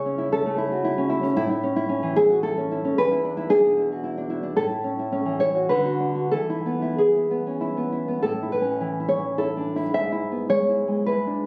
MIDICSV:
0, 0, Header, 1, 2, 480
1, 0, Start_track
1, 0, Key_signature, 3, "major"
1, 0, Tempo, 526316
1, 1233, Time_signature, 3, 2, 24, 8
1, 1714, Tempo, 538600
1, 4594, Tempo, 597015
1, 5554, Tempo, 638978
1, 6994, Tempo, 571429
1, 9716, End_track
2, 0, Start_track
2, 0, Title_t, "Nylon-string guitar"
2, 0, Program_c, 0, 24
2, 0, Note_on_c, 0, 49, 78
2, 0, Note_on_c, 0, 64, 55
2, 0, Note_on_c, 0, 73, 112
2, 50, Note_on_c, 0, 61, 54
2, 155, Note_off_c, 0, 64, 0
2, 166, Note_on_c, 0, 64, 60
2, 261, Note_off_c, 0, 73, 0
2, 285, Note_off_c, 0, 61, 0
2, 295, Note_on_c, 0, 61, 57
2, 296, Note_on_c, 0, 69, 101
2, 417, Note_on_c, 0, 57, 52
2, 518, Note_off_c, 0, 64, 0
2, 525, Note_off_c, 0, 69, 0
2, 529, Note_on_c, 0, 64, 60
2, 654, Note_on_c, 0, 66, 53
2, 761, Note_off_c, 0, 64, 0
2, 772, Note_on_c, 0, 64, 63
2, 881, Note_off_c, 0, 61, 0
2, 892, Note_on_c, 0, 61, 59
2, 989, Note_off_c, 0, 64, 0
2, 1000, Note_on_c, 0, 64, 64
2, 1110, Note_off_c, 0, 61, 0
2, 1121, Note_on_c, 0, 61, 61
2, 1123, Note_off_c, 0, 57, 0
2, 1202, Note_off_c, 0, 49, 0
2, 1231, Note_off_c, 0, 64, 0
2, 1237, Note_off_c, 0, 61, 0
2, 1241, Note_off_c, 0, 66, 0
2, 1244, Note_on_c, 0, 45, 79
2, 1245, Note_on_c, 0, 64, 110
2, 1354, Note_off_c, 0, 64, 0
2, 1365, Note_on_c, 0, 64, 56
2, 1489, Note_on_c, 0, 61, 63
2, 1597, Note_off_c, 0, 64, 0
2, 1608, Note_on_c, 0, 64, 67
2, 1712, Note_off_c, 0, 61, 0
2, 1723, Note_on_c, 0, 61, 64
2, 1845, Note_on_c, 0, 52, 56
2, 1960, Note_off_c, 0, 64, 0
2, 1967, Note_on_c, 0, 68, 113
2, 1971, Note_on_c, 0, 64, 64
2, 2085, Note_off_c, 0, 64, 0
2, 2089, Note_on_c, 0, 66, 58
2, 2192, Note_off_c, 0, 68, 0
2, 2201, Note_off_c, 0, 66, 0
2, 2204, Note_on_c, 0, 64, 66
2, 2205, Note_on_c, 0, 69, 100
2, 2323, Note_off_c, 0, 61, 0
2, 2334, Note_on_c, 0, 61, 68
2, 2448, Note_off_c, 0, 64, 0
2, 2459, Note_on_c, 0, 64, 66
2, 2562, Note_off_c, 0, 52, 0
2, 2566, Note_off_c, 0, 61, 0
2, 2577, Note_on_c, 0, 61, 64
2, 2646, Note_off_c, 0, 45, 0
2, 2661, Note_off_c, 0, 69, 0
2, 2686, Note_off_c, 0, 61, 0
2, 2687, Note_off_c, 0, 64, 0
2, 2697, Note_on_c, 0, 71, 115
2, 2704, Note_on_c, 0, 40, 88
2, 2815, Note_on_c, 0, 64, 54
2, 2931, Note_on_c, 0, 62, 65
2, 3032, Note_off_c, 0, 64, 0
2, 3042, Note_on_c, 0, 64, 73
2, 3146, Note_off_c, 0, 62, 0
2, 3150, Note_off_c, 0, 71, 0
2, 3155, Note_on_c, 0, 62, 70
2, 3159, Note_on_c, 0, 68, 115
2, 3288, Note_on_c, 0, 47, 53
2, 3390, Note_off_c, 0, 64, 0
2, 3400, Note_on_c, 0, 64, 61
2, 3529, Note_off_c, 0, 68, 0
2, 3533, Note_on_c, 0, 66, 55
2, 3625, Note_off_c, 0, 64, 0
2, 3636, Note_on_c, 0, 64, 64
2, 3750, Note_off_c, 0, 62, 0
2, 3761, Note_on_c, 0, 62, 61
2, 3859, Note_off_c, 0, 64, 0
2, 3870, Note_on_c, 0, 64, 65
2, 3977, Note_off_c, 0, 62, 0
2, 3987, Note_off_c, 0, 47, 0
2, 3987, Note_on_c, 0, 62, 58
2, 4080, Note_off_c, 0, 40, 0
2, 4104, Note_off_c, 0, 66, 0
2, 4105, Note_off_c, 0, 62, 0
2, 4105, Note_off_c, 0, 64, 0
2, 4108, Note_on_c, 0, 45, 81
2, 4108, Note_on_c, 0, 69, 102
2, 4230, Note_on_c, 0, 64, 52
2, 4351, Note_on_c, 0, 61, 54
2, 4476, Note_off_c, 0, 64, 0
2, 4487, Note_on_c, 0, 64, 58
2, 4594, Note_off_c, 0, 61, 0
2, 4603, Note_on_c, 0, 61, 58
2, 4709, Note_on_c, 0, 52, 46
2, 4799, Note_off_c, 0, 69, 0
2, 4821, Note_off_c, 0, 64, 0
2, 4826, Note_on_c, 0, 73, 101
2, 4830, Note_on_c, 0, 64, 52
2, 4943, Note_off_c, 0, 64, 0
2, 4946, Note_on_c, 0, 66, 47
2, 5036, Note_off_c, 0, 45, 0
2, 5051, Note_off_c, 0, 73, 0
2, 5061, Note_off_c, 0, 52, 0
2, 5062, Note_on_c, 0, 71, 97
2, 5063, Note_off_c, 0, 66, 0
2, 5065, Note_off_c, 0, 61, 0
2, 5067, Note_on_c, 0, 50, 71
2, 5189, Note_on_c, 0, 66, 52
2, 5307, Note_on_c, 0, 62, 55
2, 5419, Note_off_c, 0, 66, 0
2, 5429, Note_on_c, 0, 66, 45
2, 5535, Note_off_c, 0, 71, 0
2, 5543, Note_off_c, 0, 50, 0
2, 5556, Note_off_c, 0, 66, 0
2, 5557, Note_off_c, 0, 62, 0
2, 5561, Note_on_c, 0, 69, 96
2, 5565, Note_on_c, 0, 52, 61
2, 5699, Note_on_c, 0, 64, 44
2, 5819, Note_on_c, 0, 59, 43
2, 5932, Note_off_c, 0, 64, 0
2, 5941, Note_on_c, 0, 64, 47
2, 6032, Note_off_c, 0, 69, 0
2, 6059, Note_off_c, 0, 59, 0
2, 6063, Note_on_c, 0, 68, 70
2, 6068, Note_on_c, 0, 59, 49
2, 6181, Note_off_c, 0, 64, 0
2, 6190, Note_on_c, 0, 64, 40
2, 6298, Note_off_c, 0, 59, 0
2, 6307, Note_on_c, 0, 59, 47
2, 6425, Note_on_c, 0, 61, 35
2, 6524, Note_off_c, 0, 64, 0
2, 6533, Note_on_c, 0, 64, 47
2, 6647, Note_off_c, 0, 59, 0
2, 6656, Note_on_c, 0, 59, 46
2, 6742, Note_off_c, 0, 68, 0
2, 6760, Note_off_c, 0, 64, 0
2, 6770, Note_on_c, 0, 64, 44
2, 6879, Note_off_c, 0, 59, 0
2, 6888, Note_on_c, 0, 59, 41
2, 6969, Note_off_c, 0, 52, 0
2, 6994, Note_off_c, 0, 59, 0
2, 6997, Note_off_c, 0, 64, 0
2, 6997, Note_on_c, 0, 69, 79
2, 7002, Note_on_c, 0, 45, 53
2, 7003, Note_off_c, 0, 61, 0
2, 7166, Note_on_c, 0, 64, 39
2, 7231, Note_off_c, 0, 69, 0
2, 7245, Note_on_c, 0, 71, 74
2, 7321, Note_on_c, 0, 61, 42
2, 7486, Note_on_c, 0, 52, 41
2, 7637, Note_off_c, 0, 64, 0
2, 7647, Note_on_c, 0, 64, 40
2, 7707, Note_off_c, 0, 71, 0
2, 7719, Note_on_c, 0, 73, 76
2, 7796, Note_off_c, 0, 52, 0
2, 7806, Note_on_c, 0, 52, 42
2, 7952, Note_off_c, 0, 73, 0
2, 7958, Note_off_c, 0, 64, 0
2, 7967, Note_on_c, 0, 69, 77
2, 7970, Note_on_c, 0, 64, 47
2, 8044, Note_off_c, 0, 61, 0
2, 8125, Note_on_c, 0, 62, 38
2, 8276, Note_off_c, 0, 64, 0
2, 8286, Note_on_c, 0, 64, 48
2, 8405, Note_off_c, 0, 45, 0
2, 8418, Note_off_c, 0, 69, 0
2, 8432, Note_off_c, 0, 52, 0
2, 8436, Note_off_c, 0, 62, 0
2, 8436, Note_on_c, 0, 44, 52
2, 8438, Note_off_c, 0, 64, 0
2, 8439, Note_on_c, 0, 76, 83
2, 8590, Note_on_c, 0, 64, 44
2, 8754, Note_on_c, 0, 59, 41
2, 8886, Note_off_c, 0, 76, 0
2, 8901, Note_off_c, 0, 64, 0
2, 8904, Note_on_c, 0, 56, 48
2, 8905, Note_on_c, 0, 73, 86
2, 9068, Note_on_c, 0, 64, 39
2, 9216, Note_off_c, 0, 56, 0
2, 9226, Note_on_c, 0, 56, 42
2, 9367, Note_off_c, 0, 73, 0
2, 9376, Note_off_c, 0, 64, 0
2, 9381, Note_on_c, 0, 71, 72
2, 9386, Note_on_c, 0, 64, 47
2, 9473, Note_off_c, 0, 59, 0
2, 9553, Note_on_c, 0, 62, 37
2, 9698, Note_off_c, 0, 64, 0
2, 9716, Note_off_c, 0, 44, 0
2, 9716, Note_off_c, 0, 56, 0
2, 9716, Note_off_c, 0, 62, 0
2, 9716, Note_off_c, 0, 71, 0
2, 9716, End_track
0, 0, End_of_file